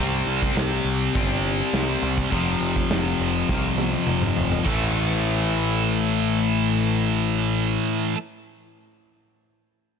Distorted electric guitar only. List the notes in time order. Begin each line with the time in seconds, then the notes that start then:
Already playing: C3 G3
0.00 C4
2.31 F2 C3 F3
4.63 A2 E3 A3